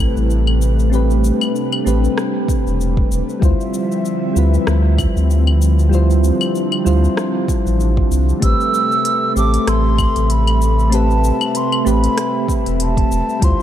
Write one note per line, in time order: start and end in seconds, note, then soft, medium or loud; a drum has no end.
0.00 3.38 C3 medium
0.00 13.38 G3 medium
0.00 0.90 A3 medium
0.00 3.38 A3 medium
0.00 0.92 C4 medium
0.00 0.90 E4 medium
0.00 0.93 G4 medium
0.00 0.90 A4 medium
0.00 0.95 B4 medium
0.00 3.38 B4 medium
0.16 1.32 A1 medium
0.16 cabasa soft
0.30 cabasa soft
0.47 claves medium
0.62 cabasa medium
0.79 cabasa soft
0.90 1.81 A3 medium
0.90 1.82 C4 medium
0.90 3.40 D4 medium
0.90 1.83 G4 medium
0.90 cabasa soft
0.95 1.84 B4 medium
1.10 cabasa soft
1.24 cabasa medium
1.41 cabasa soft
1.41 claves medium
1.56 cabasa soft
1.72 claves medium
1.85 2.08 A1 medium
1.85 2.07 A3 medium
1.85 2.07 C4 medium
1.85 2.08 G4 medium
1.85 2.08 B4 medium
1.85 cabasa medium
2.04 cabasa soft
2.18 cross-stick medium
2.18 cabasa soft
2.48 kick medium
2.48 cabasa medium
2.66 3.04 E1 medium
2.66 cabasa soft
2.81 cabasa soft
2.97 kick medium
3.11 3.23 E1 medium
3.11 cabasa medium
3.29 cabasa soft
3.40 3.54 D2 medium
3.40 8.39 D3 medium
3.40 8.38 F3 medium
3.40 4.31 G3 medium
3.40 8.38 C4 medium
3.40 4.32 E4 medium
3.40 4.33 F4 medium
3.40 5.90 E5 medium
3.40 kick loud
3.40 cabasa soft
3.45 4.34 C5 medium
3.61 cabasa soft
3.74 cabasa medium
3.92 cabasa soft
4.05 cabasa soft
4.33 4.58 D2 medium
4.33 5.88 G3 medium
4.33 5.89 E4 medium
4.33 5.89 F4 medium
4.33 cabasa medium
4.38 5.90 B4 medium
4.54 cabasa soft
4.67 5.07 D2 medium
4.67 cross-stick medium
4.67 cabasa soft
4.98 kick loud
4.98 cabasa medium
4.98 claves medium
5.16 6.32 D2 medium
5.16 cabasa soft
5.30 cabasa soft
5.47 claves medium
5.62 cabasa medium
5.79 cabasa soft
5.89 6.81 G3 medium
5.89 8.40 D4 medium
5.89 6.82 E4 medium
5.89 6.83 F4 medium
5.89 cabasa soft
5.95 6.84 C5 medium
6.10 cabasa soft
6.24 cabasa medium
6.41 cabasa soft
6.41 claves medium
6.55 cabasa soft
6.72 claves medium
6.85 7.08 D2 medium
6.85 7.07 G3 medium
6.85 7.07 E4 medium
6.85 7.08 F4 medium
6.85 7.08 C5 medium
6.85 cabasa medium
7.04 cabasa soft
7.17 cross-stick medium
7.17 cabasa soft
7.48 kick medium
7.48 cabasa medium
7.66 8.04 A1 medium
7.66 cabasa soft
7.80 cabasa soft
7.97 kick loud
8.11 8.33 C2 medium
8.11 cabasa medium
8.29 cabasa soft
8.40 8.54 A1 loud
8.40 13.38 C3 medium
8.40 9.32 A3 medium
8.40 13.38 A3 medium
8.40 9.32 C4 medium
8.40 9.33 G4 medium
8.40 10.90 A4 medium
8.40 13.62 E5 medium
8.40 9.33 E6 loud
8.40 kick loud
8.40 closed hi-hat medium
8.40 cabasa soft
8.45 9.34 B4 medium
8.60 cabasa soft
8.74 cabasa medium
8.92 cabasa soft
9.05 closed hi-hat medium
9.05 cabasa soft
9.34 9.58 A1 medium
9.34 10.88 A3 medium
9.34 10.89 C4 medium
9.34 10.90 G4 medium
9.34 9.70 D6 loud
9.34 cabasa medium
9.39 10.90 A4 medium
9.54 closed hi-hat soft
9.54 cabasa soft
9.67 10.07 A1 medium
9.67 10.33 C6 loud
9.67 cross-stick medium
9.67 closed hi-hat medium
9.67 cabasa soft
9.98 kick medium
9.98 cabasa medium
9.98 claves medium
10.16 11.32 A1 medium
10.16 closed hi-hat soft
10.16 cabasa soft
10.30 10.96 B5 loud
10.30 closed hi-hat medium
10.30 cabasa soft
10.47 closed hi-hat soft
10.47 claves medium
10.62 cabasa medium
10.79 cabasa soft
10.90 11.82 A3 medium
10.90 11.82 C4 medium
10.90 13.62 C4 medium
10.90 11.83 G4 medium
10.90 closed hi-hat medium
10.90 cabasa soft
10.94 11.84 B4 medium
10.94 11.58 A5 loud
11.11 cabasa soft
11.24 cabasa medium
11.41 cabasa soft
11.41 claves medium
11.55 11.89 C6 medium
11.55 closed hi-hat medium
11.55 cabasa soft
11.72 claves medium
11.85 12.08 A1 medium
11.85 12.07 A3 medium
11.85 12.07 C4 medium
11.85 12.07 G4 medium
11.85 12.08 B4 medium
11.85 12.54 B5 loud
11.85 cabasa medium
12.04 closed hi-hat soft
12.04 cabasa soft
12.18 cross-stick medium
12.18 closed hi-hat medium
12.18 cabasa soft
12.48 kick medium
12.48 cabasa medium
12.66 13.04 E1 medium
12.66 closed hi-hat soft
12.66 cabasa soft
12.80 13.46 A5 medium
12.80 closed hi-hat medium
12.80 cabasa soft
12.97 kick loud
12.97 closed hi-hat soft
13.11 13.23 E1 medium
13.11 cabasa medium
13.29 cabasa soft
13.40 13.54 D2 loud
13.40 13.62 D3 medium
13.40 13.62 F3 medium
13.40 13.62 G3 medium
13.40 13.62 E4 medium
13.40 13.62 F4 medium
13.40 kick loud
13.40 closed hi-hat medium
13.40 cabasa soft
13.44 13.62 C5 medium
13.44 13.62 C6 loud